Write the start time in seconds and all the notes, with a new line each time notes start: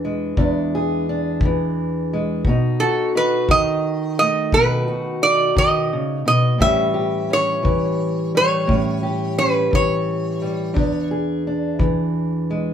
Already playing: E2 E3 D4 G#4
0.05 G#3
0.37 E2 D4, kick
0.75 G#4
1.09 D4
1.41 kick
1.45 E3
2.13 G#3
2.45 B2, kick
2.49 D#4
2.80 F#4 A4
3.15 D#4 B4
3.49 D#3 D#5, kick
4.19 A3 D#5
4.52 B2 D#4 B4, kick
4.88 F#4
5.22 D#4 D5
5.55 D#3 D#5, kick
5.93 C#3
6.25 B2 D#5
6.58 A2 E3 G3 C#4 G4 E5, kick
6.94 G4
7.30 C#4 C#5
7.63 E3, kick
8.35 G3 C#5
8.67 A2 C#4, kick
9.03 G4
9.38 C#4 B4
9.71 E3, kick
9.75 C#5
10.42 G3
10.74 E2 D4, kick
11.11 G#4
11.47 D4
11.79 E3, kick
12.50 G#3